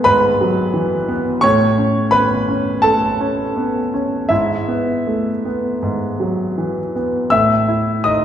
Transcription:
Already playing: G#2 A3 B3 G#4 G#5
0.04 G#2 B4 B5
0.41 F#3
0.74 E3
1.08 B3
1.41 A2 C#5 C#6
1.78 C#4
2.11 B3 B4 B5
2.49 C#4
2.82 A3 A4 A5
3.21 C#4
3.57 B3
3.94 C#4
4.29 G#2 E4 E5
4.68 B3
5.07 A3
5.45 B3
5.83 G#2
6.20 F#3
6.58 E3
6.96 B3
7.30 A2 E5 E6
7.68 E4
8.04 D#4 D#5 D#6

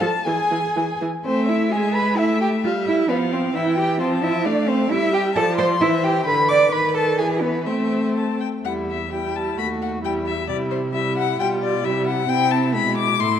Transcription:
0.00 F3 A4 A5
0.25 E3 G#4 G#5
0.51 E3
0.76 E3
1.01 E3
1.25 A3 C4 C5 E5
1.49 E4 E5
1.72 G#3 G#4 E5 G#5
1.95 B4 B5
2.18 A3 E4 E5
2.41 G4 G5
2.64 G3 F4 F5
2.87 E4 E5
3.09 F3 B3 B4 F5
3.32 C4 C5
3.54 E3 E4 E5 G5
3.78 G4 G5
4.00 F3 C4 C5 A5
4.23 E4 E5
4.45 A3 D4 D5 F5
4.68 C4 C5
4.90 G3 E4 E5
5.13 G4 G5
5.36 F3 A4 D5 A5
5.58 C5 C6
5.80 E3 E4 C5 E5
6.03 G4 G5
6.26 D3 B4 B5
6.48 D5 D6
6.72 D#3 B4 B5
6.95 A4 A5
7.18 E3 G#4 G#5
7.41 B3 B4
7.66 A3 C4 C5 E5
8.15 A5
8.40 G5
8.64 E2 G3 E4 F#5
8.90 E5
9.11 G3 E4 G5
9.36 A5
9.58 D#2 A3 F#4 B5
9.82 F#5
10.03 E2 G3 E4 G5
10.26 E5
10.48 C3 G3 E4 D5
10.71 C5
10.94 G3 E4 E5
11.17 F#5
11.39 B2 G3 F4 G5
11.62 D5
11.84 C3 G3 E4 E5
12.06 F#5
12.29 C3 C4 E4 G5
12.51 A5
12.74 B2 G#3 B5
12.97 D6
13.19 A2 A3 E4 C6

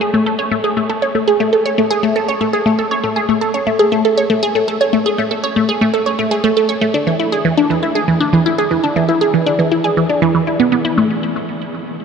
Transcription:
0.01 G#4
0.14 A3
0.26 A4
0.39 C#5
0.51 A3
0.64 G#4
0.77 A3
0.90 A4
1.02 C#5
1.15 A3
1.28 G#4
1.40 A3
1.53 A4
1.66 C#5
1.78 A3
1.91 G#4
2.03 A3
2.16 A4
2.28 C#5
2.41 A3
2.53 G#4
2.66 A3
2.79 A4
2.91 C#5
3.04 A3
3.16 G#4
3.29 A3
3.41 A4
3.54 C#5
3.67 A3
3.79 G#4
3.92 A3
4.05 A4
4.18 C#5
4.30 A3
4.43 G#4
4.55 A3
4.68 A4
4.81 C#5
4.93 A3
5.06 G#4
5.18 A3
5.31 A4
5.44 C#5
5.56 A3
5.69 G#4
5.81 A3
5.94 A4
6.06 C#5
6.19 A3
6.31 G#4
6.44 A3
6.57 A4
6.69 C#5
6.81 A3
6.94 D4
7.07 E3
7.19 E4
7.32 G#4
7.45 E3
7.57 D4
7.70 E3
7.83 E4
7.95 G#4
8.08 E3
8.20 D4
8.33 E3
8.46 E4
8.58 G#4
8.71 E3
8.84 D4
8.96 E3
9.09 E4
9.21 G#4
9.34 E3
9.46 D4
9.59 E3
9.72 E4
9.84 G#4
9.97 E3
10.10 D4
10.22 E3
10.35 E3
10.47 E4
10.60 B3
10.72 B3
10.85 E4
10.98 A3

